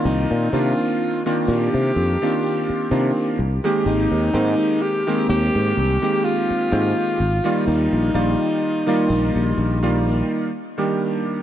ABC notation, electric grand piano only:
X:1
M:4/4
L:1/16
Q:"Swing 16ths" 1/4=63
K:Eb
V:1 name="Electric grand piano"
[E,B,CFd]2 [E,B,CDF]3 [E,B,CDF]4 [E,B,CDF]3 [E,B,CDF]2 z [E,A,B,CG]- | [E,A,B,CG]2 [E,A,B,CG]3 [E,A,B,CG]4 [E,A,B,CG]3 [E,A,B,CG]2 z [E,G,B,Fd]- | [E,G,B,Fd]2 [E,G,B,Fd]3 [E,G,B,Fd]4 [E,G,B,Fd]3 z [E,G,B,DG]3 |]